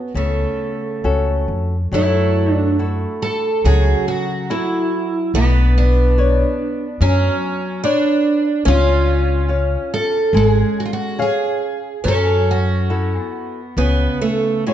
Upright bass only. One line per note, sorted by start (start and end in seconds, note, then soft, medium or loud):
0.14 0.43 C#2 medium
1.04 1.45 C#2 medium
1.48 1.88 F2 medium
1.92 3.04 F#2 medium
3.64 3.92 C#2 medium
5.34 6.43 B1 medium
7.01 7.28 F#2 loud
8.66 9.75 C#2 loud
10.33 10.61 G#1 loud
12.05 13.17 F#2 loud
13.77 14.06 C#2 medium